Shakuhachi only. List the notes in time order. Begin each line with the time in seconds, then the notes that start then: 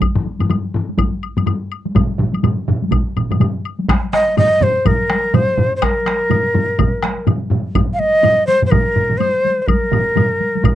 4.13 D#5
4.38 D#5
4.63 C5
4.87 A#4
5.35 C5
5.77 C5
5.83 A#4
7.94 F5
7.99 D#5
8.47 C5
8.66 C5
8.71 A#4
9.18 C5
9.62 C5
9.67 A#4